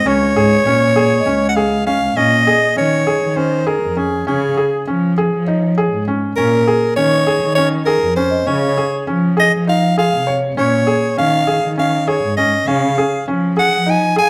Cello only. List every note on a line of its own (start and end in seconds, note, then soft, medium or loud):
0.06 0.19 C#2 medium
0.36 0.62 G#2 medium
0.66 1.18 A#2 medium
1.26 1.91 C#2 medium
2.01 2.14 C#2 medium
2.16 2.42 A#2 medium
2.76 3.15 D#3 medium
3.22 3.74 D#3 medium
3.82 4.21 F2 medium
4.28 4.53 C#3 medium
4.87 5.26 F3 medium
5.32 5.84 F3 medium
5.92 6.31 G#2 medium
6.38 6.63 A#2 medium
6.98 7.37 D#3 medium
7.43 7.94 D#3 medium
8.02 8.41 F2 medium
8.48 8.73 C#3 loud
9.07 9.46 F3 medium
9.53 10.04 F3 medium
10.13 10.52 C3 medium
10.58 10.84 A#2 medium
11.18 11.57 D#3 medium
11.63 12.14 D#3 medium
12.24 12.62 G#2 medium
12.67 12.93 C#3 medium
13.28 13.66 F3 medium
13.72 14.24 F3 medium